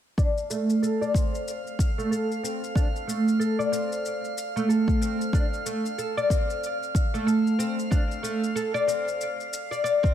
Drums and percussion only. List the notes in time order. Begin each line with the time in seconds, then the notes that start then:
0.18 kick, shaker
0.38 shaker
0.50 shaker
0.70 shaker
0.83 shaker
1.02 shaker
1.14 kick, shaker
1.35 shaker
1.48 shaker
1.67 shaker
1.79 kick, shaker
2.00 shaker
2.13 shaker
2.32 shaker
2.45 shaker
2.64 shaker
2.76 kick, shaker
2.96 shaker
3.09 shaker
3.28 shaker
3.41 shaker
3.60 shaker
3.73 shaker
3.92 shaker
4.05 shaker
4.25 shaker
4.38 shaker
4.57 shaker
4.70 shaker
4.88 kick, shaker
5.02 shaker
5.21 shaker
5.33 kick, shaker
5.53 shaker
5.66 shaker
5.86 shaker
5.99 shaker
6.18 shaker
6.30 kick, shaker
6.50 shaker
6.64 shaker
6.83 shaker
6.95 kick, shaker
7.15 shaker
7.28 shaker
7.47 shaker
7.60 shaker
7.79 shaker
7.92 kick, shaker
8.11 shaker
8.24 shaker
8.44 shaker
8.57 shaker
8.76 shaker
8.89 shaker
9.08 shaker
9.21 shaker
9.40 shaker
9.53 shaker
9.72 shaker
9.86 shaker
10.04 kick, shaker